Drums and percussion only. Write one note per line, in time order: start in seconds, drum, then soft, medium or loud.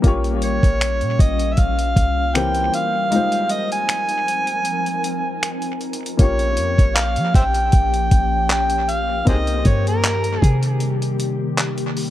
0.04 kick loud
0.04 closed hi-hat medium
0.24 closed hi-hat soft
0.42 closed hi-hat medium
0.63 kick medium
0.63 closed hi-hat soft
0.81 finger snap loud
0.81 closed hi-hat medium
1.01 closed hi-hat soft
1.19 kick medium
1.19 closed hi-hat medium
1.39 closed hi-hat medium
1.57 kick medium
1.57 closed hi-hat medium
1.79 closed hi-hat soft
1.96 kick medium
1.96 closed hi-hat medium
2.35 finger snap loud
2.35 closed hi-hat medium
2.55 closed hi-hat medium
2.74 closed hi-hat medium
3.12 closed hi-hat medium
3.32 closed hi-hat soft
3.49 closed hi-hat medium
3.72 closed hi-hat medium
3.89 finger snap loud
3.89 closed hi-hat medium
4.09 closed hi-hat soft
4.28 closed hi-hat medium
4.47 closed hi-hat medium
4.65 closed hi-hat medium
4.86 closed hi-hat medium
5.04 closed hi-hat medium
5.43 finger snap loud
5.43 closed hi-hat medium
5.62 closed hi-hat medium
5.81 closed hi-hat soft
5.93 closed hi-hat medium
6.06 closed hi-hat medium
6.19 kick loud
6.19 closed hi-hat medium
6.39 closed hi-hat soft
6.57 closed hi-hat medium
6.78 kick medium
6.78 closed hi-hat medium
6.96 clap loud
6.96 closed hi-hat medium
7.16 closed hi-hat medium
7.34 kick loud
7.34 closed hi-hat medium
7.54 closed hi-hat medium
7.72 kick medium
7.72 closed hi-hat medium
7.94 closed hi-hat soft
8.11 kick medium
8.11 closed hi-hat medium
8.50 clap loud
8.50 closed hi-hat medium
8.70 closed hi-hat medium
8.89 closed hi-hat medium
9.27 kick loud
9.27 closed hi-hat medium
9.47 closed hi-hat soft
9.65 kick loud
9.65 closed hi-hat medium
9.87 closed hi-hat medium
10.04 clap loud
10.04 closed hi-hat medium
10.24 closed hi-hat medium
10.42 kick loud
10.42 closed hi-hat medium
10.63 closed hi-hat medium
10.80 closed hi-hat medium
11.02 closed hi-hat soft
11.20 closed hi-hat medium
11.58 clap loud
11.58 closed hi-hat medium
11.78 closed hi-hat medium
11.97 open hi-hat medium